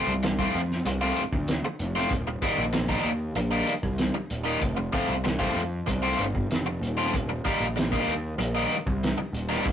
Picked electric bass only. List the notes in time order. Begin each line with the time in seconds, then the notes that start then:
0.07 C2
0.55 F2
0.85 C2
1.32 D2
1.80 F1
2.11 D#1
2.58 A#1
3.04 D#2
3.36 A#1
3.83 C2
4.31 D#1
4.62 F1
5.09 C2
5.56 F2
5.88 C2
6.19 G1
6.50 F1
6.81 D#1
7.14 D#1
7.60 A#1
8.08 D#2
8.38 A#1
8.86 C2
9.33 D#1
9.66 F1